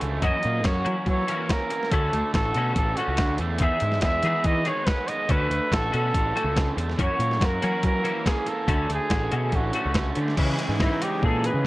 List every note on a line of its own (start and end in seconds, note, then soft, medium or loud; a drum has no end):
0.00 0.19 C#2 medium
0.00 0.22 D3 medium
0.00 0.22 A3 medium
0.00 0.86 C#4 medium
0.00 0.65 F#4 medium
0.00 muted clean electric guitar stroke soft
0.00 closed hi-hat medium
0.22 0.31 F#2 loud
0.22 1.28 F#2 medium
0.22 0.43 E3 medium
0.22 0.42 A#3 medium
0.22 0.42 C#4 medium
0.22 0.42 F#4 medium
0.22 0.67 D#5 loud
0.22 kick loud
0.22 closed hi-hat medium
0.43 0.65 A#2 medium
0.43 1.28 A#3 medium
0.43 muted clean electric guitar stroke medium
0.43 closed hi-hat medium
0.64 0.82 F#2 medium
0.64 1.71 F#4 medium
0.64 1.07 C#5 medium
0.64 muted clean electric guitar stroke soft
0.64 kick loud
0.64 snare medium
0.64 closed hi-hat medium
0.85 1.06 E3 medium
0.85 0.95 F#3 medium
0.85 1.06 A#3 medium
0.85 1.06 C#4 medium
0.85 1.50 C#4 medium
0.85 1.06 F#4 loud
0.85 closed hi-hat medium
1.06 1.92 E3 medium
1.06 1.24 F#3 medium
1.06 1.52 C#5 medium
1.06 muted clean electric guitar stroke soft
1.06 kick medium
1.06 closed hi-hat medium
1.27 1.49 E3 medium
1.27 1.49 A#3 medium
1.27 1.70 A#3 medium
1.27 1.49 C#4 medium
1.27 1.49 F#4 medium
1.27 closed hi-hat medium
1.49 1.92 C#4 medium
1.49 1.93 A#4 medium
1.49 muted clean electric guitar stroke soft
1.49 kick loud
1.49 snare loud
1.49 closed hi-hat medium
1.70 1.92 A#3 medium
1.70 muted clean electric guitar stroke soft
1.70 closed hi-hat medium
1.83 snare soft
1.92 2.09 D2 loud
1.92 2.75 D3 medium
1.92 2.13 A3 medium
1.92 2.13 C#4 medium
1.92 2.13 F#4 medium
1.92 2.34 A4 medium
1.92 kick loud
1.92 closed hi-hat medium
2.13 2.21 D2 medium
2.13 2.97 A3 medium
2.13 muted clean electric guitar stroke medium
2.13 closed hi-hat medium
2.34 2.51 A1 medium
2.34 3.40 F#4 medium
2.34 2.73 A4 medium
2.34 muted clean electric guitar stroke soft
2.34 kick loud
2.34 snare loud
2.34 closed hi-hat medium
2.54 2.72 B2 medium
2.54 2.76 A3 medium
2.54 3.17 C#4 medium
2.54 2.77 C#4 medium
2.54 2.77 F#4 loud
2.54 closed hi-hat medium
2.74 2.93 A1 medium
2.74 3.61 D3 medium
2.74 2.98 A4 medium
2.74 muted clean electric guitar stroke soft
2.74 kick loud
2.74 closed hi-hat medium
2.96 3.39 A3 medium
2.96 3.19 A3 medium
2.96 3.19 C#4 medium
2.96 3.39 F#4 medium
2.96 3.19 F#4 medium
2.96 closed hi-hat medium
3.08 3.16 C#2 medium
3.17 3.37 D2 medium
3.17 3.60 C#4 medium
3.17 muted clean electric guitar stroke soft
3.17 kick loud
3.17 snare loud
3.17 closed hi-hat medium
3.38 3.58 E2 medium
3.38 3.61 A3 medium
3.38 muted clean electric guitar stroke soft
3.38 closed hi-hat medium
3.58 3.69 E2 loud
3.58 4.67 E2 medium
3.58 3.82 D#3 medium
3.58 3.82 B3 medium
3.58 3.82 D#4 medium
3.58 3.82 G#4 medium
3.58 4.00 E5 loud
3.58 kick loud
3.58 closed hi-hat medium
3.80 4.02 G#2 medium
3.80 4.65 G#3 medium
3.80 muted clean electric guitar stroke soft
3.80 closed hi-hat medium
3.92 snare soft
4.01 4.19 E2 medium
4.01 5.09 G#4 medium
4.01 4.47 E5 loud
4.01 muted clean electric guitar stroke soft
4.01 kick loud
4.01 snare loud
4.01 closed hi-hat medium
4.23 4.44 D#3 medium
4.23 4.32 E3 medium
4.23 4.87 B3 medium
4.23 4.44 B3 medium
4.23 4.45 D#4 medium
4.23 4.45 G#4 medium
4.23 closed hi-hat medium
4.44 5.28 D#3 medium
4.44 4.62 E3 medium
4.44 4.69 D#5 loud
4.44 muted clean electric guitar stroke soft
4.44 kick loud
4.44 closed hi-hat medium
4.65 4.85 D#3 medium
4.65 5.08 G#3 medium
4.65 4.86 B3 medium
4.65 4.86 D#4 medium
4.65 4.86 G#4 medium
4.65 4.87 C#5 medium
4.65 closed hi-hat medium
4.86 5.30 B3 medium
4.86 5.09 B4 medium
4.86 muted clean electric guitar stroke soft
4.86 kick loud
4.86 snare loud
4.86 closed hi-hat medium
5.08 5.30 G#3 medium
5.08 5.32 D#5 medium
5.08 muted clean electric guitar stroke soft
5.08 closed hi-hat medium
5.28 5.46 D2 loud
5.28 6.13 D3 medium
5.28 5.50 A3 medium
5.28 5.50 C#4 medium
5.28 5.49 F#4 medium
5.28 5.75 B4 loud
5.28 kick loud
5.28 closed hi-hat medium
5.50 5.59 D2 medium
5.50 6.35 A3 medium
5.50 muted clean electric guitar stroke soft
5.50 closed hi-hat medium
5.72 5.89 A1 medium
5.72 7.41 F#4 medium
5.72 5.94 A4 medium
5.72 muted clean electric guitar stroke soft
5.72 kick loud
5.72 snare loud
5.72 closed hi-hat medium
5.92 6.11 B2 medium
5.92 6.13 A3 medium
5.92 6.13 C#4 medium
5.92 6.55 C#4 medium
5.92 6.13 F#4 medium
5.92 6.75 A4 medium
5.92 closed hi-hat medium
6.14 6.31 A1 medium
6.14 6.99 D3 medium
6.14 muted clean electric guitar stroke medium
6.14 kick loud
6.14 closed hi-hat medium
6.36 6.76 A3 medium
6.36 6.55 A3 medium
6.36 6.55 C#4 medium
6.36 6.56 F#4 medium
6.36 closed hi-hat medium
6.44 6.70 C#2 medium
6.55 7.61 C#4 medium
6.55 muted clean electric guitar stroke soft
6.55 kick loud
6.55 snare loud
6.55 closed hi-hat medium
6.77 6.94 E2 medium
6.77 6.99 A3 medium
6.77 muted clean electric guitar stroke soft
6.77 closed hi-hat medium
6.90 snare soft
6.98 8.05 F#2 medium
6.98 7.08 F#2 medium
6.98 7.20 E3 medium
6.98 7.20 A#3 medium
6.98 7.20 C#4 medium
6.98 7.19 F#4 loud
6.98 7.47 C#5 loud
6.98 kick loud
6.98 closed hi-hat medium
7.19 7.42 A#2 medium
7.19 8.03 A#3 medium
7.19 muted clean electric guitar stroke soft
7.19 closed hi-hat medium
7.31 snare soft
7.41 7.58 F#2 medium
7.41 8.47 F#4 medium
7.41 muted clean electric guitar stroke soft
7.41 kick loud
7.41 snare loud
7.41 closed hi-hat medium
7.46 7.85 A#4 medium
7.62 7.82 E3 medium
7.62 7.72 F#3 medium
7.62 7.82 A#3 medium
7.62 8.25 C#4 medium
7.62 7.82 C#4 medium
7.62 7.83 F#4 medium
7.62 closed hi-hat medium
7.83 8.68 E3 medium
7.83 8.01 F#3 loud
7.83 8.29 A#4 medium
7.83 muted clean electric guitar stroke soft
7.83 kick loud
7.83 closed hi-hat medium
8.04 8.25 E3 medium
8.04 8.46 A#3 medium
8.04 8.25 A#3 medium
8.04 8.26 C#4 medium
8.04 8.26 F#4 medium
8.04 closed hi-hat medium
8.25 8.71 C#4 medium
8.25 8.50 G#4 medium
8.25 muted clean electric guitar stroke soft
8.25 kick loud
8.25 snare loud
8.25 closed hi-hat medium
8.46 8.68 A#3 medium
8.46 8.90 A4 medium
8.46 muted clean electric guitar stroke soft
8.46 closed hi-hat medium
8.68 8.85 D2 loud
8.68 9.52 D3 medium
8.68 8.89 A3 medium
8.68 8.89 C#4 medium
8.68 8.88 F#4 medium
8.68 kick loud
8.68 closed hi-hat medium
8.89 8.98 D2 medium
8.89 9.72 A3 medium
8.89 muted clean electric guitar stroke medium
8.89 closed hi-hat medium
8.94 9.57 G#4 medium
9.10 9.27 A1 medium
9.10 10.16 F#4 medium
9.10 muted clean electric guitar stroke soft
9.10 kick loud
9.10 snare loud
9.10 closed hi-hat medium
9.31 9.49 B2 medium
9.31 9.53 A3 medium
9.31 9.53 C#4 medium
9.31 9.95 C#4 medium
9.31 9.53 F#4 medium
9.31 closed hi-hat medium
9.52 9.70 A1 medium
9.52 10.37 D3 medium
9.52 10.18 F#4 medium
9.52 muted clean electric guitar stroke soft
9.52 kick medium
9.52 closed hi-hat medium
9.73 10.15 A3 medium
9.73 9.96 A3 medium
9.73 9.96 C#4 medium
9.73 9.96 F#4 medium
9.73 closed hi-hat medium
9.86 10.11 C#2 medium
9.94 10.38 C#4 medium
9.94 muted clean electric guitar stroke soft
9.94 kick loud
9.94 snare loud
9.94 closed hi-hat medium
10.15 10.34 D3 medium
10.15 10.37 A3 medium
10.15 muted clean electric guitar stroke soft
10.15 closed hi-hat medium
10.28 snare soft
10.36 11.67 C#3 medium
10.36 10.55 C#3 medium
10.36 11.67 E3 medium
10.36 11.67 G#3 medium
10.36 11.67 C#4 loud
10.36 kick loud
10.36 crash loud
10.59 11.02 G#3 medium
10.59 closed hi-hat medium
10.69 10.86 G#2 medium
10.80 11.67 D#4 medium
10.80 11.04 E4 medium
10.80 kick loud
10.80 snare loud
11.02 11.45 G#3 medium
11.02 11.26 G4 medium
11.02 closed hi-hat medium
11.23 11.48 A#2 medium
11.23 11.67 G#4 medium
11.23 11.48 A4 medium
11.23 kick loud
11.44 11.67 G#3 medium
11.44 11.67 B4 medium
11.44 closed hi-hat medium
11.54 11.67 C#3 medium